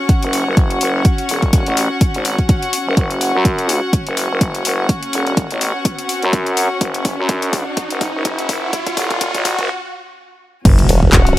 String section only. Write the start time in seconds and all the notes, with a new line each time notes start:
Already playing: C#4 F#4 F#5 C#6
10.65 C#4
10.80 F#4
11.12 F#5
11.35 C#6